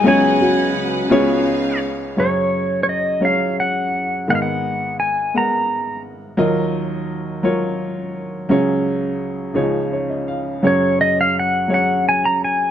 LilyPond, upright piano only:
<<
  \new Staff \with { instrumentName = "Upright piano" } { \time 6/8 \key fis \major \tempo 4. = 57 << { r2. | r2. | r2. | r2. |
r2 cis''16 dis''16 eis''8 | r2. | } \\ { <fis b gis' cis''>4 r8 <b eis' gis' cis''>4 r8 | <fis cis' gis' cis''>4 r8 <fis cis' gis' cis''>4 r8 | <gis b ais' dis''>4 r8 <gis b ais' fis''>4 r8 | <fis eis' ais' dis''>4 r8 <fis eis' ais' cis''>4 r8 |
<fis cis' gis' cis''>4 r8 <eis dis' gis' cis''>4 r8 | <fis cis' gis' cis''>4 r8 <fis cis' gis' cis''>4 r8 | } >> }
  \new Staff \with { instrumentName = "Upright piano" } { \clef bass \time 6/8 \key fis \major <cis, cis>4. <cis, cis>4. | <fis,, fis,>2. | <gis,, gis,>2. | <dis, dis>2. |
<cis, cis>4. <cis, cis>4. | <fis,, fis,>2. | }
>>